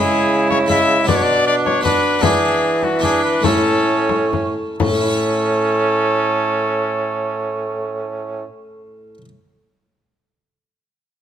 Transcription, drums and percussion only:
0.51 frame drum
0.70 frame drum
1.08 frame drum
1.66 frame drum
1.86 frame drum
2.23 frame drum
2.83 frame drum
3.03 frame drum
3.44 frame drum
4.09 frame drum
4.33 frame drum
4.80 frame drum

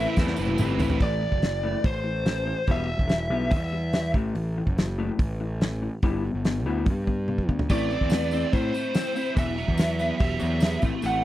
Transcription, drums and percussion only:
0.16 kick, snare, tambourine
0.28 snare
0.36 tambourine
0.48 high tom
0.58 mid tom, tambourine
0.79 floor tom, tambourine
0.90 floor tom
1.00 kick, crash
1.32 kick
1.42 snare, open hi-hat
1.84 kick, open hi-hat
2.26 snare, open hi-hat
2.67 kick, open hi-hat
2.99 kick
3.09 snare, open hi-hat
3.51 kick, open hi-hat
3.93 snare, open hi-hat
4.14 kick
4.35 open hi-hat
4.67 kick
4.78 snare, open hi-hat
5.19 kick, open hi-hat
5.61 snare, open hi-hat
6.03 kick, open hi-hat
6.45 snare, open hi-hat
6.86 kick, open hi-hat
7.07 kick
7.28 high tom
7.38 kick
7.49 kick
7.59 floor tom
7.70 kick, crash, tambourine
7.91 tambourine
8.01 kick
8.10 snare, open hi-hat, tambourine
8.31 tambourine
8.53 kick, open hi-hat, tambourine
8.74 tambourine
8.95 snare, open hi-hat, tambourine
9.16 tambourine
9.36 kick, open hi-hat, tambourine
9.58 tambourine
9.68 kick
9.78 snare, open hi-hat, tambourine
9.99 tambourine
10.19 kick, open hi-hat, tambourine
10.40 tambourine
10.60 snare, open hi-hat, tambourine
10.82 kick, tambourine
11.02 open hi-hat, tambourine

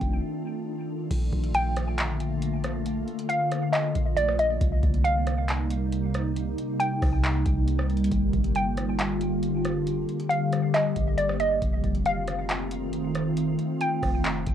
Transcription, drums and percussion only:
0.01 kick, closed hi-hat
1.11 kick, closed hi-hat, crash
1.33 kick, closed hi-hat
1.44 closed hi-hat
1.54 closed hi-hat
1.76 cross-stick, closed hi-hat
1.98 clap, closed hi-hat
2.20 closed hi-hat
2.42 closed hi-hat
2.64 cross-stick, closed hi-hat
2.86 closed hi-hat
3.08 closed hi-hat
3.19 closed hi-hat
3.30 closed hi-hat
3.52 cross-stick, closed hi-hat
3.73 clap, closed hi-hat
3.95 kick, closed hi-hat
4.17 closed hi-hat
4.29 cross-stick
4.39 closed hi-hat
4.61 kick, closed hi-hat
4.83 kick, closed hi-hat
4.94 closed hi-hat
5.05 closed hi-hat
5.27 cross-stick, closed hi-hat
5.49 clap, closed hi-hat
5.70 closed hi-hat
5.92 closed hi-hat
6.14 cross-stick, closed hi-hat
6.36 closed hi-hat
6.58 closed hi-hat
6.80 closed hi-hat
7.02 kick, cross-stick, open hi-hat
7.24 clap, closed hi-hat
7.46 kick, closed hi-hat
7.68 closed hi-hat
7.79 cross-stick
7.90 closed hi-hat
7.97 closed hi-hat
8.04 closed hi-hat
8.12 kick, closed hi-hat
8.33 kick, closed hi-hat
8.44 closed hi-hat
8.55 closed hi-hat
8.77 cross-stick, closed hi-hat
8.99 clap, closed hi-hat
9.21 closed hi-hat
9.43 closed hi-hat
9.65 cross-stick, closed hi-hat
9.87 closed hi-hat
10.09 closed hi-hat
10.20 closed hi-hat
10.30 closed hi-hat
10.52 cross-stick, closed hi-hat
10.74 clap, closed hi-hat
10.96 kick, closed hi-hat
11.18 closed hi-hat
11.29 cross-stick
11.40 closed hi-hat
11.62 kick, closed hi-hat
11.84 kick, closed hi-hat
11.95 closed hi-hat
12.06 closed hi-hat
12.28 cross-stick, closed hi-hat
12.49 clap, closed hi-hat
12.71 closed hi-hat
12.93 closed hi-hat
13.15 cross-stick, closed hi-hat
13.37 closed hi-hat
13.59 closed hi-hat
13.81 closed hi-hat
14.03 kick, cross-stick, open hi-hat
14.25 clap, closed hi-hat
14.46 kick, closed hi-hat

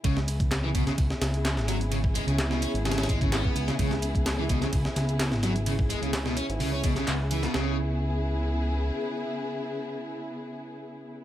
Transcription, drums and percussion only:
0.04 kick, closed hi-hat, ride
0.17 snare
0.28 closed hi-hat, ride
0.40 kick, closed hi-hat
0.51 snare, clap, closed hi-hat, ride
0.75 kick, closed hi-hat, ride
0.87 snare, closed hi-hat
0.98 kick, closed hi-hat, ride
1.10 snare
1.22 snare, closed hi-hat, ride
1.34 closed hi-hat
1.45 snare, clap, closed hi-hat, ride
1.57 snare
1.68 snare, closed hi-hat, ride
1.81 closed hi-hat
1.92 closed hi-hat, ride
2.04 kick
2.15 closed hi-hat, ride
2.28 closed hi-hat
2.38 snare, clap, closed hi-hat, ride
2.51 snare
2.62 closed hi-hat, ride
2.75 closed hi-hat
2.85 snare, closed hi-hat, ride
2.92 snare, ride
2.98 snare, ride
3.03 snare, ride
3.09 kick, closed hi-hat, ride
3.21 kick, closed hi-hat
3.32 snare, clap, closed hi-hat, ride
3.45 kick
3.56 closed hi-hat, ride
3.68 snare, closed hi-hat
3.79 kick, closed hi-hat, ride
3.91 snare
4.02 closed hi-hat, ride
4.15 kick, closed hi-hat
4.26 snare, clap, closed hi-hat, ride
4.49 kick, closed hi-hat, ride
4.62 snare, closed hi-hat
4.73 kick, closed hi-hat, ride
4.85 snare
4.96 snare, closed hi-hat, ride
5.09 closed hi-hat
5.20 snare, clap, closed hi-hat, ride
5.32 snare
5.43 snare, closed hi-hat, ride
5.56 closed hi-hat
5.66 closed hi-hat, ride
5.79 kick
5.90 closed hi-hat, ride
6.03 closed hi-hat
6.13 snare, clap, closed hi-hat, ride
6.26 snare
6.37 closed hi-hat, ride
6.50 closed hi-hat
6.60 closed hi-hat, open hi-hat
6.84 kick, closed hi-hat, ride
6.96 snare, closed hi-hat
7.07 snare, clap, closed hi-hat, ride
7.31 closed hi-hat, ride
7.43 snare, closed hi-hat
7.54 snare

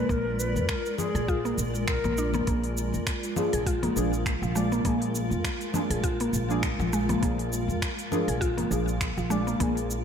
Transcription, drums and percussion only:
0.10 kick, shaker
0.40 shaker
0.56 shaker
0.69 finger snap, kick, shaker
0.86 shaker
0.98 low conga, shaker
1.15 shaker
1.29 kick, shaker
1.45 shaker
1.58 shaker
1.75 shaker
1.88 finger snap, kick, shaker
2.04 low conga, shaker
2.17 shaker
2.34 low conga, shaker
2.47 kick, open hi-hat, shaker
2.64 open hi-hat
2.78 shaker
2.94 shaker
3.07 finger snap, kick, open hi-hat, shaker
3.23 open hi-hat, shaker
3.36 low conga, shaker
3.53 open hi-hat, shaker
3.66 kick, open hi-hat, shaker
3.83 open hi-hat, low conga
3.97 shaker
4.13 shaker
4.26 finger snap, kick, open hi-hat, shaker
4.43 shaker
4.56 shaker
4.72 shaker
4.85 kick, open hi-hat, shaker
5.02 open hi-hat
5.15 shaker
5.32 shaker
5.44 finger snap, kick, open hi-hat, shaker
5.61 open hi-hat, shaker
5.74 low conga, shaker
5.91 open hi-hat, shaker
6.04 kick, open hi-hat, shaker
6.20 open hi-hat, shaker
6.34 shaker
6.50 shaker
6.63 finger snap, kick, open hi-hat, shaker
6.80 low conga, shaker
6.93 shaker
7.09 open hi-hat, low conga, shaker
7.23 kick, open hi-hat, shaker
7.39 open hi-hat
7.53 shaker
7.70 shaker
7.82 finger snap, kick, open hi-hat, shaker
7.99 open hi-hat, shaker
8.12 low conga, shaker
8.28 open hi-hat, shaker
8.42 kick, open hi-hat, shaker
8.58 open hi-hat, low conga
8.72 shaker
8.88 shaker
9.01 finger snap, kick, open hi-hat, shaker
9.18 shaker
9.31 shaker
9.48 shaker
9.60 kick, open hi-hat, shaker
9.77 open hi-hat, shaker
9.91 shaker

